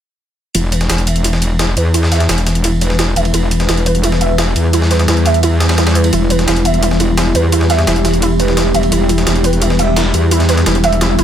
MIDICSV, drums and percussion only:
0, 0, Header, 1, 2, 480
1, 0, Start_track
1, 0, Key_signature, 1, "minor"
1, 0, Tempo, 348837
1, 754, Time_signature, 4, 2, 24, 8
1, 15465, End_track
2, 0, Start_track
2, 0, Title_t, "Drums"
2, 752, Note_on_c, 9, 51, 82
2, 753, Note_on_c, 9, 42, 92
2, 890, Note_off_c, 9, 42, 0
2, 890, Note_off_c, 9, 51, 0
2, 992, Note_on_c, 9, 42, 67
2, 992, Note_on_c, 9, 51, 65
2, 1112, Note_off_c, 9, 42, 0
2, 1112, Note_on_c, 9, 42, 35
2, 1113, Note_on_c, 9, 38, 45
2, 1130, Note_off_c, 9, 51, 0
2, 1232, Note_off_c, 9, 38, 0
2, 1232, Note_off_c, 9, 42, 0
2, 1232, Note_on_c, 9, 38, 111
2, 1232, Note_on_c, 9, 42, 93
2, 1232, Note_on_c, 9, 51, 83
2, 1352, Note_off_c, 9, 42, 0
2, 1352, Note_on_c, 9, 42, 36
2, 1370, Note_off_c, 9, 38, 0
2, 1370, Note_off_c, 9, 51, 0
2, 1472, Note_off_c, 9, 42, 0
2, 1472, Note_on_c, 9, 42, 68
2, 1473, Note_on_c, 9, 51, 64
2, 1592, Note_off_c, 9, 42, 0
2, 1592, Note_on_c, 9, 42, 37
2, 1610, Note_off_c, 9, 51, 0
2, 1712, Note_off_c, 9, 42, 0
2, 1712, Note_on_c, 9, 42, 93
2, 1713, Note_on_c, 9, 51, 84
2, 1832, Note_on_c, 9, 38, 48
2, 1850, Note_off_c, 9, 42, 0
2, 1850, Note_off_c, 9, 51, 0
2, 1952, Note_on_c, 9, 42, 65
2, 1953, Note_on_c, 9, 51, 64
2, 1970, Note_off_c, 9, 38, 0
2, 2090, Note_off_c, 9, 42, 0
2, 2090, Note_off_c, 9, 51, 0
2, 2192, Note_on_c, 9, 42, 93
2, 2193, Note_on_c, 9, 38, 117
2, 2193, Note_on_c, 9, 51, 85
2, 2330, Note_off_c, 9, 38, 0
2, 2330, Note_off_c, 9, 42, 0
2, 2330, Note_off_c, 9, 51, 0
2, 2432, Note_on_c, 9, 51, 64
2, 2433, Note_on_c, 9, 42, 68
2, 2570, Note_off_c, 9, 42, 0
2, 2570, Note_off_c, 9, 51, 0
2, 2672, Note_on_c, 9, 42, 91
2, 2672, Note_on_c, 9, 51, 80
2, 2792, Note_on_c, 9, 38, 42
2, 2810, Note_off_c, 9, 42, 0
2, 2810, Note_off_c, 9, 51, 0
2, 2912, Note_off_c, 9, 38, 0
2, 2912, Note_on_c, 9, 38, 41
2, 2912, Note_on_c, 9, 51, 65
2, 2913, Note_on_c, 9, 42, 65
2, 3033, Note_off_c, 9, 38, 0
2, 3033, Note_off_c, 9, 42, 0
2, 3033, Note_on_c, 9, 38, 48
2, 3033, Note_on_c, 9, 42, 36
2, 3050, Note_off_c, 9, 51, 0
2, 3152, Note_off_c, 9, 38, 0
2, 3152, Note_off_c, 9, 42, 0
2, 3152, Note_on_c, 9, 38, 108
2, 3152, Note_on_c, 9, 42, 89
2, 3152, Note_on_c, 9, 51, 85
2, 3273, Note_off_c, 9, 42, 0
2, 3273, Note_on_c, 9, 42, 35
2, 3290, Note_off_c, 9, 38, 0
2, 3290, Note_off_c, 9, 51, 0
2, 3392, Note_off_c, 9, 42, 0
2, 3392, Note_on_c, 9, 42, 65
2, 3393, Note_on_c, 9, 38, 45
2, 3393, Note_on_c, 9, 51, 62
2, 3513, Note_off_c, 9, 42, 0
2, 3513, Note_on_c, 9, 42, 36
2, 3530, Note_off_c, 9, 38, 0
2, 3530, Note_off_c, 9, 51, 0
2, 3632, Note_off_c, 9, 42, 0
2, 3632, Note_on_c, 9, 42, 88
2, 3632, Note_on_c, 9, 51, 86
2, 3770, Note_off_c, 9, 42, 0
2, 3770, Note_off_c, 9, 51, 0
2, 3872, Note_on_c, 9, 42, 59
2, 3872, Note_on_c, 9, 51, 66
2, 3992, Note_on_c, 9, 38, 45
2, 4009, Note_off_c, 9, 42, 0
2, 4010, Note_off_c, 9, 51, 0
2, 4112, Note_off_c, 9, 38, 0
2, 4112, Note_on_c, 9, 38, 112
2, 4112, Note_on_c, 9, 42, 86
2, 4112, Note_on_c, 9, 51, 84
2, 4250, Note_off_c, 9, 38, 0
2, 4250, Note_off_c, 9, 42, 0
2, 4250, Note_off_c, 9, 51, 0
2, 4352, Note_on_c, 9, 42, 63
2, 4353, Note_on_c, 9, 51, 66
2, 4473, Note_off_c, 9, 51, 0
2, 4473, Note_on_c, 9, 51, 44
2, 4490, Note_off_c, 9, 42, 0
2, 4593, Note_off_c, 9, 51, 0
2, 4593, Note_on_c, 9, 42, 84
2, 4593, Note_on_c, 9, 51, 80
2, 4730, Note_off_c, 9, 42, 0
2, 4730, Note_off_c, 9, 51, 0
2, 4833, Note_on_c, 9, 42, 62
2, 4833, Note_on_c, 9, 51, 66
2, 4953, Note_off_c, 9, 42, 0
2, 4953, Note_on_c, 9, 38, 48
2, 4953, Note_on_c, 9, 42, 35
2, 4970, Note_off_c, 9, 51, 0
2, 5073, Note_off_c, 9, 38, 0
2, 5073, Note_off_c, 9, 42, 0
2, 5073, Note_on_c, 9, 38, 105
2, 5073, Note_on_c, 9, 42, 84
2, 5073, Note_on_c, 9, 51, 84
2, 5193, Note_off_c, 9, 42, 0
2, 5193, Note_on_c, 9, 42, 33
2, 5210, Note_off_c, 9, 38, 0
2, 5210, Note_off_c, 9, 51, 0
2, 5313, Note_off_c, 9, 42, 0
2, 5313, Note_on_c, 9, 42, 62
2, 5313, Note_on_c, 9, 51, 66
2, 5433, Note_off_c, 9, 42, 0
2, 5433, Note_on_c, 9, 42, 34
2, 5451, Note_off_c, 9, 51, 0
2, 5552, Note_off_c, 9, 42, 0
2, 5552, Note_on_c, 9, 42, 84
2, 5553, Note_on_c, 9, 51, 84
2, 5673, Note_on_c, 9, 38, 50
2, 5690, Note_off_c, 9, 42, 0
2, 5691, Note_off_c, 9, 51, 0
2, 5792, Note_on_c, 9, 42, 60
2, 5793, Note_on_c, 9, 51, 64
2, 5811, Note_off_c, 9, 38, 0
2, 5930, Note_off_c, 9, 42, 0
2, 5931, Note_off_c, 9, 51, 0
2, 6032, Note_on_c, 9, 38, 115
2, 6032, Note_on_c, 9, 51, 87
2, 6033, Note_on_c, 9, 42, 84
2, 6170, Note_off_c, 9, 38, 0
2, 6170, Note_off_c, 9, 42, 0
2, 6170, Note_off_c, 9, 51, 0
2, 6272, Note_on_c, 9, 51, 67
2, 6273, Note_on_c, 9, 42, 61
2, 6410, Note_off_c, 9, 51, 0
2, 6411, Note_off_c, 9, 42, 0
2, 6512, Note_on_c, 9, 42, 84
2, 6513, Note_on_c, 9, 51, 82
2, 6633, Note_on_c, 9, 38, 41
2, 6650, Note_off_c, 9, 42, 0
2, 6651, Note_off_c, 9, 51, 0
2, 6753, Note_off_c, 9, 38, 0
2, 6753, Note_on_c, 9, 38, 39
2, 6753, Note_on_c, 9, 42, 62
2, 6753, Note_on_c, 9, 51, 65
2, 6872, Note_off_c, 9, 42, 0
2, 6872, Note_on_c, 9, 42, 33
2, 6873, Note_off_c, 9, 38, 0
2, 6873, Note_on_c, 9, 38, 47
2, 6891, Note_off_c, 9, 51, 0
2, 6992, Note_off_c, 9, 38, 0
2, 6992, Note_off_c, 9, 42, 0
2, 6992, Note_on_c, 9, 38, 113
2, 6992, Note_on_c, 9, 42, 84
2, 6992, Note_on_c, 9, 51, 81
2, 7112, Note_off_c, 9, 42, 0
2, 7112, Note_on_c, 9, 42, 32
2, 7130, Note_off_c, 9, 38, 0
2, 7130, Note_off_c, 9, 51, 0
2, 7232, Note_off_c, 9, 42, 0
2, 7232, Note_on_c, 9, 42, 63
2, 7233, Note_on_c, 9, 38, 43
2, 7233, Note_on_c, 9, 51, 66
2, 7352, Note_off_c, 9, 42, 0
2, 7352, Note_on_c, 9, 42, 33
2, 7370, Note_off_c, 9, 38, 0
2, 7370, Note_off_c, 9, 51, 0
2, 7472, Note_off_c, 9, 42, 0
2, 7472, Note_on_c, 9, 42, 82
2, 7472, Note_on_c, 9, 51, 81
2, 7610, Note_off_c, 9, 42, 0
2, 7610, Note_off_c, 9, 51, 0
2, 7712, Note_on_c, 9, 38, 99
2, 7712, Note_on_c, 9, 42, 58
2, 7712, Note_on_c, 9, 51, 79
2, 7832, Note_off_c, 9, 38, 0
2, 7832, Note_off_c, 9, 51, 0
2, 7832, Note_on_c, 9, 38, 101
2, 7832, Note_on_c, 9, 51, 78
2, 7850, Note_off_c, 9, 42, 0
2, 7952, Note_off_c, 9, 38, 0
2, 7952, Note_off_c, 9, 51, 0
2, 7952, Note_on_c, 9, 38, 100
2, 7952, Note_on_c, 9, 42, 83
2, 7952, Note_on_c, 9, 51, 77
2, 8072, Note_off_c, 9, 38, 0
2, 8072, Note_off_c, 9, 51, 0
2, 8072, Note_on_c, 9, 38, 98
2, 8072, Note_on_c, 9, 51, 73
2, 8090, Note_off_c, 9, 42, 0
2, 8192, Note_off_c, 9, 51, 0
2, 8192, Note_on_c, 9, 42, 64
2, 8192, Note_on_c, 9, 51, 59
2, 8210, Note_off_c, 9, 38, 0
2, 8312, Note_off_c, 9, 51, 0
2, 8312, Note_on_c, 9, 51, 77
2, 8330, Note_off_c, 9, 42, 0
2, 8432, Note_off_c, 9, 51, 0
2, 8432, Note_on_c, 9, 42, 84
2, 8432, Note_on_c, 9, 51, 82
2, 8569, Note_off_c, 9, 51, 0
2, 8570, Note_off_c, 9, 42, 0
2, 8672, Note_on_c, 9, 42, 65
2, 8672, Note_on_c, 9, 51, 67
2, 8792, Note_on_c, 9, 38, 49
2, 8793, Note_off_c, 9, 42, 0
2, 8793, Note_on_c, 9, 42, 34
2, 8809, Note_off_c, 9, 51, 0
2, 8912, Note_off_c, 9, 38, 0
2, 8912, Note_off_c, 9, 42, 0
2, 8912, Note_on_c, 9, 38, 110
2, 8912, Note_on_c, 9, 42, 86
2, 8912, Note_on_c, 9, 51, 83
2, 9032, Note_off_c, 9, 42, 0
2, 9032, Note_on_c, 9, 42, 34
2, 9049, Note_off_c, 9, 38, 0
2, 9049, Note_off_c, 9, 51, 0
2, 9152, Note_off_c, 9, 42, 0
2, 9152, Note_on_c, 9, 42, 62
2, 9152, Note_on_c, 9, 51, 64
2, 9273, Note_off_c, 9, 42, 0
2, 9273, Note_on_c, 9, 42, 34
2, 9290, Note_off_c, 9, 51, 0
2, 9392, Note_off_c, 9, 42, 0
2, 9392, Note_on_c, 9, 42, 84
2, 9392, Note_on_c, 9, 51, 82
2, 9512, Note_on_c, 9, 38, 48
2, 9529, Note_off_c, 9, 51, 0
2, 9530, Note_off_c, 9, 42, 0
2, 9632, Note_on_c, 9, 51, 64
2, 9633, Note_on_c, 9, 42, 62
2, 9650, Note_off_c, 9, 38, 0
2, 9770, Note_off_c, 9, 42, 0
2, 9770, Note_off_c, 9, 51, 0
2, 9873, Note_on_c, 9, 38, 113
2, 9873, Note_on_c, 9, 42, 83
2, 9873, Note_on_c, 9, 51, 86
2, 10010, Note_off_c, 9, 38, 0
2, 10010, Note_off_c, 9, 42, 0
2, 10010, Note_off_c, 9, 51, 0
2, 10113, Note_on_c, 9, 42, 61
2, 10113, Note_on_c, 9, 51, 68
2, 10250, Note_off_c, 9, 51, 0
2, 10251, Note_off_c, 9, 42, 0
2, 10352, Note_on_c, 9, 51, 85
2, 10353, Note_on_c, 9, 42, 89
2, 10472, Note_on_c, 9, 38, 44
2, 10490, Note_off_c, 9, 51, 0
2, 10491, Note_off_c, 9, 42, 0
2, 10593, Note_off_c, 9, 38, 0
2, 10593, Note_on_c, 9, 38, 41
2, 10593, Note_on_c, 9, 42, 68
2, 10593, Note_on_c, 9, 51, 65
2, 10713, Note_off_c, 9, 38, 0
2, 10713, Note_on_c, 9, 38, 50
2, 10714, Note_off_c, 9, 42, 0
2, 10714, Note_on_c, 9, 42, 34
2, 10730, Note_off_c, 9, 51, 0
2, 10832, Note_off_c, 9, 38, 0
2, 10832, Note_on_c, 9, 38, 114
2, 10832, Note_on_c, 9, 51, 82
2, 10834, Note_off_c, 9, 42, 0
2, 10834, Note_on_c, 9, 42, 90
2, 10954, Note_off_c, 9, 42, 0
2, 10954, Note_on_c, 9, 42, 35
2, 10970, Note_off_c, 9, 38, 0
2, 10970, Note_off_c, 9, 51, 0
2, 11073, Note_on_c, 9, 38, 46
2, 11073, Note_on_c, 9, 51, 66
2, 11074, Note_off_c, 9, 42, 0
2, 11074, Note_on_c, 9, 42, 63
2, 11194, Note_off_c, 9, 42, 0
2, 11194, Note_on_c, 9, 42, 36
2, 11210, Note_off_c, 9, 38, 0
2, 11210, Note_off_c, 9, 51, 0
2, 11313, Note_off_c, 9, 42, 0
2, 11313, Note_on_c, 9, 42, 86
2, 11313, Note_on_c, 9, 51, 85
2, 11450, Note_off_c, 9, 51, 0
2, 11451, Note_off_c, 9, 42, 0
2, 11552, Note_on_c, 9, 51, 66
2, 11553, Note_on_c, 9, 42, 61
2, 11673, Note_on_c, 9, 38, 45
2, 11690, Note_off_c, 9, 51, 0
2, 11691, Note_off_c, 9, 42, 0
2, 11792, Note_off_c, 9, 38, 0
2, 11792, Note_on_c, 9, 38, 112
2, 11792, Note_on_c, 9, 51, 90
2, 11794, Note_on_c, 9, 42, 90
2, 11930, Note_off_c, 9, 38, 0
2, 11930, Note_off_c, 9, 51, 0
2, 11931, Note_off_c, 9, 42, 0
2, 12032, Note_on_c, 9, 51, 68
2, 12033, Note_on_c, 9, 42, 63
2, 12152, Note_off_c, 9, 51, 0
2, 12152, Note_on_c, 9, 51, 45
2, 12170, Note_off_c, 9, 42, 0
2, 12272, Note_off_c, 9, 51, 0
2, 12272, Note_on_c, 9, 51, 84
2, 12273, Note_on_c, 9, 42, 91
2, 12410, Note_off_c, 9, 42, 0
2, 12410, Note_off_c, 9, 51, 0
2, 12513, Note_on_c, 9, 42, 67
2, 12513, Note_on_c, 9, 51, 66
2, 12632, Note_on_c, 9, 38, 47
2, 12633, Note_off_c, 9, 42, 0
2, 12633, Note_on_c, 9, 42, 35
2, 12650, Note_off_c, 9, 51, 0
2, 12752, Note_off_c, 9, 38, 0
2, 12752, Note_on_c, 9, 38, 115
2, 12752, Note_on_c, 9, 51, 84
2, 12753, Note_off_c, 9, 42, 0
2, 12753, Note_on_c, 9, 42, 96
2, 12873, Note_off_c, 9, 42, 0
2, 12873, Note_on_c, 9, 42, 36
2, 12889, Note_off_c, 9, 38, 0
2, 12889, Note_off_c, 9, 51, 0
2, 12991, Note_on_c, 9, 51, 62
2, 12992, Note_off_c, 9, 42, 0
2, 12992, Note_on_c, 9, 42, 66
2, 13113, Note_off_c, 9, 42, 0
2, 13113, Note_on_c, 9, 42, 36
2, 13129, Note_off_c, 9, 51, 0
2, 13231, Note_on_c, 9, 51, 88
2, 13232, Note_off_c, 9, 42, 0
2, 13232, Note_on_c, 9, 42, 91
2, 13351, Note_on_c, 9, 38, 49
2, 13369, Note_off_c, 9, 51, 0
2, 13370, Note_off_c, 9, 42, 0
2, 13471, Note_on_c, 9, 51, 68
2, 13472, Note_on_c, 9, 42, 64
2, 13489, Note_off_c, 9, 38, 0
2, 13609, Note_off_c, 9, 51, 0
2, 13610, Note_off_c, 9, 42, 0
2, 13711, Note_on_c, 9, 38, 115
2, 13711, Note_on_c, 9, 51, 86
2, 13712, Note_on_c, 9, 42, 92
2, 13849, Note_off_c, 9, 38, 0
2, 13849, Note_off_c, 9, 51, 0
2, 13850, Note_off_c, 9, 42, 0
2, 13951, Note_on_c, 9, 51, 66
2, 13953, Note_on_c, 9, 42, 66
2, 14089, Note_off_c, 9, 51, 0
2, 14090, Note_off_c, 9, 42, 0
2, 14192, Note_on_c, 9, 42, 97
2, 14192, Note_on_c, 9, 51, 84
2, 14312, Note_off_c, 9, 42, 0
2, 14312, Note_on_c, 9, 38, 41
2, 14312, Note_on_c, 9, 42, 38
2, 14330, Note_off_c, 9, 51, 0
2, 14431, Note_off_c, 9, 38, 0
2, 14431, Note_on_c, 9, 38, 42
2, 14431, Note_on_c, 9, 51, 69
2, 14432, Note_off_c, 9, 42, 0
2, 14432, Note_on_c, 9, 42, 69
2, 14552, Note_off_c, 9, 38, 0
2, 14552, Note_on_c, 9, 38, 46
2, 14553, Note_off_c, 9, 42, 0
2, 14553, Note_on_c, 9, 42, 38
2, 14569, Note_off_c, 9, 51, 0
2, 14672, Note_off_c, 9, 38, 0
2, 14672, Note_off_c, 9, 42, 0
2, 14672, Note_on_c, 9, 38, 115
2, 14672, Note_on_c, 9, 42, 93
2, 14672, Note_on_c, 9, 51, 86
2, 14793, Note_off_c, 9, 42, 0
2, 14793, Note_on_c, 9, 42, 36
2, 14809, Note_off_c, 9, 38, 0
2, 14809, Note_off_c, 9, 51, 0
2, 14911, Note_on_c, 9, 38, 45
2, 14911, Note_on_c, 9, 51, 63
2, 14913, Note_off_c, 9, 42, 0
2, 14913, Note_on_c, 9, 42, 69
2, 15033, Note_off_c, 9, 42, 0
2, 15033, Note_on_c, 9, 42, 37
2, 15049, Note_off_c, 9, 38, 0
2, 15049, Note_off_c, 9, 51, 0
2, 15152, Note_on_c, 9, 38, 105
2, 15152, Note_on_c, 9, 51, 81
2, 15153, Note_off_c, 9, 42, 0
2, 15153, Note_on_c, 9, 42, 92
2, 15289, Note_off_c, 9, 38, 0
2, 15289, Note_off_c, 9, 51, 0
2, 15291, Note_off_c, 9, 42, 0
2, 15392, Note_on_c, 9, 51, 59
2, 15394, Note_on_c, 9, 42, 64
2, 15465, Note_off_c, 9, 42, 0
2, 15465, Note_off_c, 9, 51, 0
2, 15465, End_track
0, 0, End_of_file